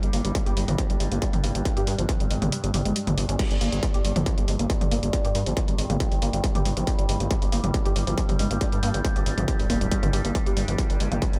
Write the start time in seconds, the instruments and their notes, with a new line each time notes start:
Already playing: synth drone G2 G3
0.03 analog synth bass G1, synth arpeggio sound G3, closed hi-hat
0.13 analog synth bass G1, synth arpeggio sound A#3, open hi-hat
0.25 analog synth bass G1, synth arpeggio sound G3, closed hi-hat
0.35 synth arpeggio sound G3, kick, closed hi-hat
0.46 analog synth bass G1, synth arpeggio sound G4, closed hi-hat
0.57 analog synth bass G1, synth arpeggio sound G3, open hi-hat
0.68 analog synth bass G1, synth arpeggio sound F3, closed hi-hat, mid tom
0.78 synth arpeggio sound F3, kick, closed hi-hat
0.90 analog synth bass G1, synth arpeggio sound G3, closed hi-hat
1.00 analog synth bass G1, synth arpeggio sound G#3, open hi-hat
1.11 analog synth bass G1, synth arpeggio sound A#3, closed hi-hat
1.22 synth arpeggio sound G3, kick, closed hi-hat
1.33 analog synth bass G1, synth arpeggio sound G3, closed hi-hat, mid tom
1.44 analog synth bass G1, synth arpeggio sound A#3, open hi-hat
1.55 analog synth bass G1, synth arpeggio sound G3, closed hi-hat
1.65 synth arpeggio sound G3, kick, closed hi-hat
1.77 analog synth bass G2, synth arpeggio sound G4, closed hi-hat
1.87 analog synth bass G2, synth arpeggio sound G3, open hi-hat
1.98 analog synth bass G1, synth arpeggio sound F3, closed hi-hat
2.09 synth arpeggio sound F3, kick, closed hi-hat
2.20 analog synth bass G#1, synth arpeggio sound G3, closed hi-hat
2.31 analog synth bass G#1, synth arpeggio sound G#3, open hi-hat
2.42 analog synth bass G#1, synth arpeggio sound A#3, closed hi-hat, mid tom
2.52 synth arpeggio sound G3, closed hi-hat
2.64 analog synth bass G1, synth arpeggio sound G3, closed hi-hat
2.74 analog synth bass G1, synth arpeggio sound G4, open hi-hat, mid tom
2.85 analog synth bass G1, synth arpeggio sound G#3, closed hi-hat
2.96 synth arpeggio sound G3, closed hi-hat
3.07 analog synth bass G1, synth arpeggio sound G3, closed hi-hat, mid tom
3.18 analog synth bass G1, synth arpeggio sound G3, open hi-hat
3.29 analog synth bass G1, synth arpeggio sound C#4, closed hi-hat
3.39 synth drone G2 G3, synth arpeggio sound G3, kick, closed hi-hat, crash
3.51 analog synth bass G1, synth arpeggio sound G3, closed hi-hat
3.61 analog synth bass G1, synth arpeggio sound A#3, open hi-hat
3.72 analog synth bass G1, synth arpeggio sound G3, closed hi-hat
3.83 synth arpeggio sound G3, kick, closed hi-hat
3.94 analog synth bass G1, synth arpeggio sound G4, closed hi-hat
4.05 analog synth bass G1, synth arpeggio sound G3, open hi-hat
4.16 analog synth bass G1, synth arpeggio sound F3, closed hi-hat, mid tom
4.26 synth arpeggio sound F3, kick, closed hi-hat
4.38 analog synth bass G1, synth arpeggio sound G3, closed hi-hat
4.48 analog synth bass G1, synth arpeggio sound G#3, open hi-hat
4.59 analog synth bass G1, synth arpeggio sound A#3, closed hi-hat
4.70 synth arpeggio sound G3, kick, closed hi-hat
4.81 analog synth bass G1, synth arpeggio sound G3, closed hi-hat, mid tom
4.91 analog synth bass G1, synth arpeggio sound A#3, open hi-hat
5.03 analog synth bass G1, synth arpeggio sound G3, closed hi-hat
5.13 synth arpeggio sound G3, kick, closed hi-hat
5.25 analog synth bass G2, synth arpeggio sound G4, closed hi-hat
5.35 analog synth bass G2, synth arpeggio sound G3, open hi-hat
5.46 analog synth bass G1, synth arpeggio sound F3, closed hi-hat
5.57 synth arpeggio sound F3, kick, closed hi-hat
5.68 analog synth bass G#1, synth arpeggio sound G3, closed hi-hat
5.78 analog synth bass G#1, synth arpeggio sound G#3, open hi-hat
5.90 analog synth bass G#1, synth arpeggio sound A#3, closed hi-hat, mid tom
6.00 synth arpeggio sound G3, kick, closed hi-hat
6.12 analog synth bass G1, synth arpeggio sound G3, open hi-hat
6.22 analog synth bass G1, synth arpeggio sound A#3, open hi-hat
6.33 analog synth bass G1, synth arpeggio sound G3, closed hi-hat
6.44 synth arpeggio sound G3, kick, closed hi-hat
6.55 analog synth bass G1, synth arpeggio sound G4, closed hi-hat, mid tom
6.65 analog synth bass G1, synth arpeggio sound G3, open hi-hat
6.77 analog synth bass G1, synth arpeggio sound F3, closed hi-hat
6.87 synth arpeggio sound F3, kick, closed hi-hat
6.99 analog synth bass G1, synth arpeggio sound G3, closed hi-hat
7.09 analog synth bass G1, synth arpeggio sound G#3, open hi-hat
7.20 analog synth bass G1, synth arpeggio sound A#3, closed hi-hat
7.31 synth arpeggio sound G3, kick, closed hi-hat
7.42 analog synth bass G1, synth arpeggio sound G3, closed hi-hat
7.52 analog synth bass G1, synth arpeggio sound A#3, open hi-hat
7.64 analog synth bass G1, synth arpeggio sound G3, closed hi-hat, mid tom
7.74 synth arpeggio sound G3, kick, closed hi-hat
7.85 analog synth bass G1, synth arpeggio sound G4, closed hi-hat
7.96 analog synth bass G1, synth arpeggio sound G3, open hi-hat
8.07 analog synth bass G1, synth arpeggio sound F3, closed hi-hat
8.18 synth arpeggio sound F3, kick, closed hi-hat
8.29 analog synth bass G1, synth arpeggio sound G3, closed hi-hat, mid tom
8.39 analog synth bass G1, synth arpeggio sound G#3, open hi-hat
8.51 analog synth bass G1, synth arpeggio sound A#3, closed hi-hat
8.61 synth arpeggio sound G3, kick, closed hi-hat
8.72 analog synth bass G2, synth arpeggio sound G3, closed hi-hat
8.83 analog synth bass G2, synth arpeggio sound A#3, open hi-hat
8.94 analog synth bass G1, synth arpeggio sound G3, closed hi-hat
9.05 synth arpeggio sound G3, kick, closed hi-hat
9.16 analog synth bass G#1, synth arpeggio sound G4, closed hi-hat
9.26 analog synth bass G#1, synth arpeggio sound G3, open hi-hat
9.38 analog synth bass G#1, synth arpeggio sound F3, closed hi-hat, mid tom
9.48 synth arpeggio sound F3, kick, closed hi-hat
9.59 analog synth bass D1, synth arpeggio sound G3, open hi-hat
9.70 analog synth bass D1, synth arpeggio sound A#3, kick, open hi-hat
9.81 analog synth bass D1, synth arpeggio sound G3, closed hi-hat
9.92 synth arpeggio sound G3, kick, closed hi-hat
10.03 analog synth bass G1, synth arpeggio sound C#4, closed hi-hat, mid tom
10.13 analog synth bass G1, synth arpeggio sound G4, open hi-hat
10.25 analog synth bass G1, synth arpeggio sound A#3, closed hi-hat
10.35 synth arpeggio sound G3, kick, closed hi-hat
10.46 analog synth bass G1, synth arpeggio sound G4, closed hi-hat
10.57 analog synth bass G1, synth arpeggio sound G3, open hi-hat
10.68 analog synth bass G1, synth arpeggio sound F3, closed hi-hat
10.78 synth arpeggio sound F3, kick, closed hi-hat
10.90 analog synth bass G1, synth arpeggio sound G3, closed hi-hat
11.00 analog synth bass G1, synth arpeggio sound G#3, open hi-hat
11.12 analog synth bass G1, synth arpeggio sound A#3, closed hi-hat, mid tom
11.22 synth arpeggio sound G3, kick, closed hi-hat
11.33 analog synth bass G1, synth arpeggio sound G3, closed hi-hat